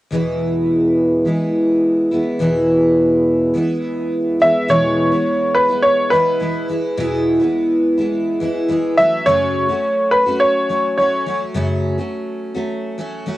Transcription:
0.11 E2 B2 E3 G#3 B3 E4
1.25 E3 G#3 B3 E4
2.11 E3 G#3 B3 E4
2.39 E2 B2 E3 G#3 B3 E4
3.54 E3 G#3 B3 E4
4.40 E3 G#3 B3 E4 E5
4.68 E2 B2 E3 G#3 B3 E4 C#5
5.12 G#3 B3 E4
5.55 B4
5.69 E3 G#3 B3 E4
5.83 C#5
6.10 E3 G#3 B3 E4 B4
6.40 E3 G#3 B3 E4
6.69 E3 G#3 B3 E4
6.97 E2 B2 E3 G#3 B3 E4
7.40 E3 G#3 B3 E4
7.98 E3 G#3 B3 E4
8.40 E3 G#3 B3 E4
8.69 E3 G#3 B3 E4
8.98 F#3 A3 C#4 F#4 E5
9.26 F#2 C#3 F#3 A3 C#4 F#4 C#5
9.69 F#3 A3 C#4 F#4
10.11 B4
10.26 F#3 A3 C#4 F#4
10.40 C#5
10.69 F#3 A3 C#4 F#4
10.97 F#3 A3 C#4 F#4 C#5
11.26 F#3 A3 C#4 F#4
11.54 F#2 C#3 F#3 A3 C#4 F#4
11.98 F#3 A3 C#4 F#4
12.54 F#3 A3 C#4 F#4
12.98 F#3 A3 C#4 F#4
13.26 F#3 A3 C#4 F#4

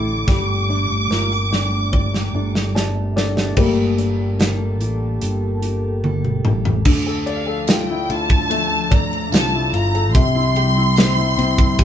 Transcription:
Already playing: A1 A2 D3 A3 D4 E4 G4 A4 D5 D6
0.27 G1 A#2 G3, kick, snare
0.69 D4
0.90 G1
1.10 G1 F4 A#4, snare
1.32 G4
1.52 D4, snare
1.92 G4 D5, kick
2.14 snare
2.33 G1 D4 A4
2.55 snare
2.75 G4 D5 A5, snare
3.16 D4 A4 D5, snare
3.37 snare
3.57 G1 G3 A3 A#3 G4 A4 A5, kick, crash
3.98 D4, closed hi-hat
4.39 A4, snare, closed hi-hat
4.80 A1 G4, closed hi-hat
5.21 G1 A4, closed hi-hat
5.62 G4, closed hi-hat
6.04 A4, high tom
6.25 mid tom
6.45 A1 G4, mid tom
6.65 floor tom
6.85 D2 D3 F3 D4, kick, crash
7.07 A4
7.26 D5 F5, ride
7.47 A4
7.67 F4 G5, snare, ride, tambourine
7.90 E4
8.10 D2 F4 A5, ride
8.30 kick
8.50 A3, ride
8.91 D2 D5 A#5, kick, ride
9.13 ride
9.32 C2 F4 A5, snare, ride, tambourine
9.54 E4
9.73 G1 F4 A#5, ride
9.94 A4, ride
10.14 C2 C3 G3 E4 C6, kick, ride
10.36 E4
10.56 G4, ride
10.77 E4
10.96 C4, snare, ride, tambourine
11.18 E4
11.37 C2 C4, ride
11.58 E4, kick
11.79 G3, kick, ride

